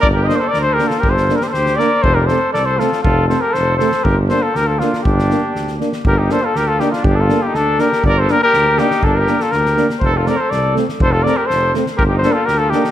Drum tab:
SD |--o-o-oo|-oooooo-|--o-o-oo|--o-o-oo|
BD |o-------|o-------|o-------|o-------|

SD |--o-o-oo|-oo-oooo|--o-o-oo|--o-o-oo|
BD |o-------|o-------|o-------|o-------|

SD |--o-o-oo|--oooooo|--o-o-oo|--o-o-oo|
BD |o-------|o-------|o-------|o-------|

SD |--o-o-oo|
BD |o-------|